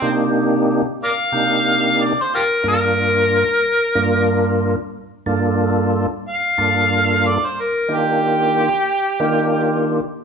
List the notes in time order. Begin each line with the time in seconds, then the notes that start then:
Already playing: C4
0.01 C3 A#3 D4 D#4 G4
1.04 A#4 D5 F5
1.32 C3 A#3 D4 D#4 G4
2.02 D5
2.21 C5
2.35 F4 G4 A#4
2.63 G2 A#3 D4 F4 A#4
2.68 A#4
3.95 G2 A#3 D4 F4 A#4
5.26 G2 A#3 D4 F4 A4
6.28 F5
6.58 G2 A#3 D4 F4 A4
7.27 D5
7.46 C5
7.60 A#4
7.89 D#3 A#3 D4 F4 G4
7.93 G4
9.20 D#3 A#3 D4 F4 G4